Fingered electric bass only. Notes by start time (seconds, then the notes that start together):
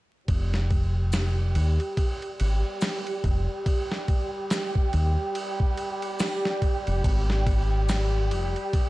0.29 F1
1.56 D#2
2.40 G#1
3.24 F1
4.94 D#2
6.87 F1
7.05 G#1
8.32 F1